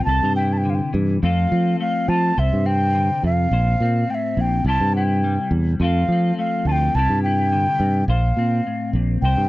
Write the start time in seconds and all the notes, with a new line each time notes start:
Already playing: C4
0.05 C2 C3 A5
0.09 A4
0.23 G2 C5
0.36 E4 G5
0.53 A5
0.58 G5
0.65 D3
0.70 F5
0.75 G5
0.93 G2 E3
1.23 F2 F3 A3 C4 F4 A4 F5
1.52 F3 C4
1.80 A3 F5
2.08 F3 F4 A5
2.37 C2 C3 C5 E5
2.53 G2
2.66 C4 G5
2.95 D3
3.23 F2 C3 F5
3.51 A#1 A#2 C5
3.80 A#2 C4
4.10 A2 G5
4.14 E5
4.37 A#1 A#2 G5
4.64 C2 C3 G3 E4 G4 A5
4.69 C5
4.80 G2
4.95 E4 G5
5.24 G3
5.51 E2
5.80 F2 F3 A3 C4 F4 F5
5.84 A4
6.08 F3 C4
6.39 A3 F5
6.65 D2 F4 A5
6.72 G5
6.95 C2 C3 G3 E4 A5
6.99 G4, muted clean electric guitar stroke
7.10 G2
7.23 E4 G5
7.52 D3
7.80 G2 C3
8.08 A#1 A#2 C5 F5
8.37 A#2 C4
8.67 A2
8.93 A#1 A#2
9.22 C2 C3 C5 G5
9.37 G2